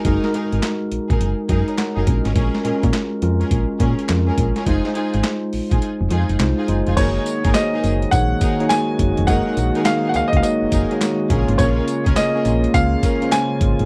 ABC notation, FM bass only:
X:1
M:4/4
L:1/16
Q:"Swing 16ths" 1/4=104
K:Gblyd
V:1 name="FM bass" clef=bass
G,,, z2 A,,, z2 B,,, B,,, G,,, z G,, z2 G,,, B,,, A,,, | B,,, z B,, B,, z2 F,,2 B,,, z B,, z F,,2 B,,, z | F,,, z2 A,,, z2 B,,, B,,, z F,,, F,, F,,, C,, z G,,, F,,, | G,,,2 z A,,, z2 G,,,2 B,,,2 z4 G,,, F,,, |
G,,, z B,,, z3 D,, D,, z G,,, G,,, z3 B,,, A,,, | B,,,2 z D,, z2 B,,,2 D,,2 z4 A,,, A,,, |]